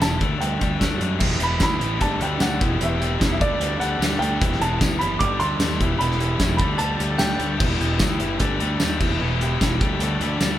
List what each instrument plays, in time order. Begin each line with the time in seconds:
Already playing: overdriven electric guitar E3 B3
0.00 fingered electric bass E1, overdriven electric guitar B3 E4 G4, upright piano A5, snare, closed hi-hat, tambourine
0.19 fingered electric bass D2, overdriven electric guitar D3 A3 D4 G4, kick, closed hi-hat
0.40 fingered electric bass D2, overdriven electric guitar G3, upright piano G5, closed hi-hat
0.60 fingered electric bass D2, overdriven electric guitar D4 G4, kick, closed hi-hat
0.79 fingered electric bass D2, overdriven electric guitar A3 D4 G4, kick, snare, closed hi-hat, tambourine
1.01 fingered electric bass F#2, overdriven electric guitar D4, closed hi-hat
1.18 fingered electric bass E1, overdriven electric guitar E3 B3 E4, transistor combo organ G4 B4 E5 B5, kick, crash
1.22 overdriven electric guitar G4
1.31 snare
1.40 fingered electric bass E1, overdriven electric guitar E3 B3 E4 G4, upright piano B5, closed hi-hat
1.60 fingered electric bass D2, overdriven electric guitar E3 B3 E4 G4, upright piano B5, kick, snare, closed hi-hat, tambourine
1.79 fingered electric bass A1, overdriven electric guitar E3 B3 E4 G4, closed hi-hat
2.01 fingered electric bass G1, overdriven electric guitar G3 A3 D4 G4, transistor combo organ A4 D5 A5, upright piano A5, kick, closed hi-hat
2.21 fingered electric bass D2, overdriven electric guitar G3 A3 D4 G4, upright piano G5, closed hi-hat
2.40 fingered electric bass D2, overdriven electric guitar G3 A3 D4 G4, upright piano F#5, snare, closed hi-hat, tambourine
2.61 fingered electric bass E1, overdriven electric guitar E3 B3 E4 G4, transistor combo organ G4 B4 E5 B5, kick, closed hi-hat
2.81 fingered electric bass E1, overdriven electric guitar E3 B3 E4 G4, upright piano E5, closed hi-hat
3.01 overdriven electric guitar E3 B3 E4 G4, closed hi-hat
3.20 fingered electric bass E1, overdriven electric guitar E3 B3 E4 G4, kick, snare, closed hi-hat, tambourine
3.32 upright piano E5
3.39 fingered electric bass D2, overdriven electric guitar D3 G3 A3 D4 G4, transistor combo organ A4 D5 A5, upright piano D5, kick, closed hi-hat
3.59 fingered electric bass D2, overdriven electric guitar D3 G3 A3 D4 G4, closed hi-hat
3.78 fingered electric bass D2, overdriven electric guitar D3 G3 A3 D4 G4, upright piano F#5, closed hi-hat
3.99 fingered electric bass D2, overdriven electric guitar D3 G3 A3 D4 G4, snare, closed hi-hat, tambourine
4.13 snare
4.19 fingered electric bass D2, overdriven electric guitar D3 G3 A3 D4 G4, upright piano G5, closed hi-hat
4.40 fingered electric bass E1, overdriven electric guitar E3 B3 E4 G4, transistor combo organ B4 E5 B5, kick, closed hi-hat
4.52 snare
4.60 fingered electric bass E1, overdriven electric guitar E3 B3 E4 G4, upright piano A5, closed hi-hat
4.80 fingered electric bass D2, overdriven electric guitar E3 B3 E4 G4, kick, snare, closed hi-hat, tambourine
4.99 fingered electric bass F#1, overdriven electric guitar E3 B3 E4 G4, upright piano B5, closed hi-hat
5.19 fingered electric bass G1, overdriven electric guitar G3 A3 D4 G4, transistor combo organ A4 D5 A5, upright piano D6, kick, closed hi-hat
5.40 fingered electric bass D2, overdriven electric guitar G3 A3 D4 G4, upright piano C6, closed hi-hat
5.59 fingered electric bass D#2, overdriven electric guitar G3 A3 D4 G4, snare, closed hi-hat, tambourine
5.70 snare
5.80 fingered electric bass E1, overdriven electric guitar E3 B3 E4 G4, transistor combo organ B4 E5 B5, kick, closed hi-hat
5.99 fingered electric bass E1, overdriven electric guitar E3 B3 E4 G4, upright piano B5, closed hi-hat
6.11 snare
6.18 overdriven electric guitar E3 B3 E4 G4, closed hi-hat
6.39 fingered electric bass E1, overdriven electric guitar E3 B3 E4 G4, kick, snare, closed hi-hat, tambourine
6.57 fingered electric bass D2, overdriven electric guitar D3 G3 A3 D4, transistor combo organ A4 D5 A5, upright piano B5, kick, closed hi-hat
6.61 overdriven electric guitar G4
6.78 fingered electric bass D2, overdriven electric guitar D3 G3 A3 D4 G4, upright piano A5, glockenspiel A6, closed hi-hat
6.99 fingered electric bass D2, overdriven electric guitar D3 G3 A3 D4 G4, closed hi-hat
7.18 fingered electric bass D2, overdriven electric guitar D3 G3 A3 D4 G4, upright piano G5, glockenspiel G6, snare, closed hi-hat, tambourine
7.30 snare
7.39 fingered electric bass D2, overdriven electric guitar D3 G3 A3 D4 G4, closed hi-hat
7.56 overdriven electric guitar E3, transistor combo organ B4 E5 B5, kick
7.60 fingered electric bass E1, overdriven electric guitar B3 E4 G4, crash
7.79 fingered electric bass E1, overdriven electric guitar E3 B3 E4 G4, closed hi-hat
7.99 fingered electric bass D2, overdriven electric guitar E3 B3 E4 G4, kick, snare, closed hi-hat, tambourine
8.20 fingered electric bass F#1, overdriven electric guitar E3 B3 E4 G4, closed hi-hat
8.39 fingered electric bass G1, overdriven electric guitar G3 A3 D4 G4, transistor combo organ G4 A4 D5 A5, kick, closed hi-hat
8.60 fingered electric bass D2, overdriven electric guitar G3 A3 D4 G4, closed hi-hat
8.79 fingered electric bass D#2, overdriven electric guitar G3 A3 D4 G4, snare, closed hi-hat, tambourine
8.98 fingered electric bass E1, overdriven electric guitar E3 E4, transistor combo organ B4 E5 B5, kick, crash
9.02 overdriven electric guitar B3 G4
9.20 fingered electric bass E1, overdriven electric guitar E3 B3 E4 G4
9.41 overdriven electric guitar E3 B3 E4 G4, closed hi-hat
9.60 fingered electric bass E1, overdriven electric guitar E3 B3 E4 G4, kick, snare, closed hi-hat, tambourine
9.81 fingered electric bass D2, overdriven electric guitar D3 G3 A3 D4 G4, transistor combo organ A4 D5 A5, kick, closed hi-hat
9.99 fingered electric bass D2, overdriven electric guitar D3 G3 A3 D4 G4, closed hi-hat
10.21 fingered electric bass D2, overdriven electric guitar D3 G3 A3 D4 G4, closed hi-hat
10.40 fingered electric bass D2, overdriven electric guitar D3 G3 A3 D4 G4, snare, closed hi-hat, tambourine